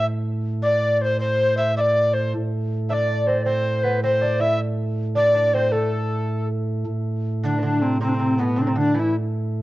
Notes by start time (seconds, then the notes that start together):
Already playing: A2
0.63 D5
1.02 C5
1.19 C5
1.57 E5
1.76 D5 E5
1.81 D5
2.13 C5
2.36 A2
2.89 D4 D5 E5
2.94 D5
3.27 C4 C5
3.45 C4 C5
3.83 B3 B4
4.03 C4 C5
4.21 D4 D5
4.40 E4 E5
5.15 D4 D5
5.35 D4
5.54 C4 C5
5.72 A3 A4
6.86 A2
7.44 D3 D4
7.58 E3 D4
7.63 D3
7.82 C3 C4
8.01 C3 C4
8.09 D4
8.15 C4
8.20 C3
8.38 B2 B3
8.56 C3 C4
8.61 D4
8.67 C3 C4
8.76 D3 D4
8.94 E3 E4
9.00 E4